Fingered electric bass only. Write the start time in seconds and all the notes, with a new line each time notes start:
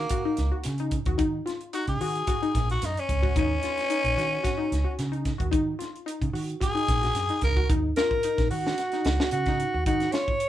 0.38 C#2
0.66 C#3
1.06 D#2
1.19 D#3
1.88 C#3
2.01 D#3
2.55 A#1
2.83 F#2
3.09 C#2
3.36 D#2
4.04 A#1
4.17 D#3
4.72 C#2
4.99 C#3
5.40 D#2
5.53 D#3
6.22 C#3
6.33 D#3
6.88 A#1
7.15 F#2
7.42 C#2
7.70 D#2
8.38 A#1
8.51 D#3
9.05 C#2
9.32 C#3
9.74 D#2
9.86 D#3